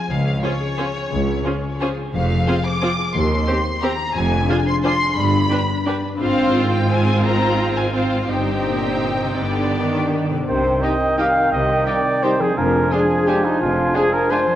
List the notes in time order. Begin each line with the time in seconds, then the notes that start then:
Already playing: F3 C4 F4 G#4 C5 G#5
0.10 C#2 C#3 F5
0.26 C4
0.42 C#4 F4 G#4 C5 C#5
0.60 G#4
0.77 C#4 F4 G#4 C5
0.94 C4
1.11 C#2 C#3
1.27 G#3
1.45 C#4 F4 G#4 C5
1.63 G#4
1.80 C#4 F4 G#4 C5
1.97 C4
2.13 F1 F2 F3 F5
2.30 F4
2.47 C4 F4 G#4 C5
2.64 C5 D6
2.82 C4 F4 G#4 C5
2.99 F4
3.14 D#2 D#3 C6
3.30 C4
3.47 C4 G4 C5
3.65 C5
3.82 C4 G4 C5 A#5
3.98 C4
4.15 F1 F2 G#5
4.31 D4
4.49 D4 F4 G#4 C5
4.66 C5 C6
4.84 D4 F4 G#4 C5 C6
5.01 D4
5.17 G1 G2 B5
5.34 D4
5.51 D4 G4 B4
5.69 B4
5.86 D4 G4 B4
6.04 D4
6.19 G#1 G#2 C4 F4 C5 F5
6.53 F4
6.71 C5 G5
6.89 C4 F4 C5 G#5
7.06 C4
7.23 G#2 A#5
7.39 G#3
7.56 F4
7.75 C5 G#5
7.93 C4 F4 C5 F5
8.28 G1 G2 C4 D#4 G4 C5 G5
8.47 C4
8.65 A#2 D#4
8.85 C5
9.04 D#4
9.23 C3 C4
9.40 G1 G2 D3 B3 D4 G4 D5
9.57 B3
9.76 D#3 D4
9.95 D5
10.13 D4
10.30 C3 D3 B3
10.34 G3
10.39 D#4
10.43 C5
10.48 C2 C3 D#3 C4 C5 G5
10.83 G3 D#4 G4 D#5 G5
11.18 G3 D#4 G4 F5 G5
11.52 C2 C3 D#5
11.86 G3 D#4 G4 D5 G5
12.23 G3 D#4 G4 C5 G5
12.39 F3 G#4
12.44 G#3
12.48 D4
12.53 D5
12.57 F1 F2 F3 D4 A#4 G#5
12.92 G#3 D4 F4 G#4 G#5
13.27 G#3 D4 F4 G4 G#5
13.45 D#4
13.61 F1 F2 F4
13.95 G#3 D4 F4 G#4 G#5
14.13 A#4
14.31 G#3 D4 F4 C5 G#5
14.46 F3
14.51 G3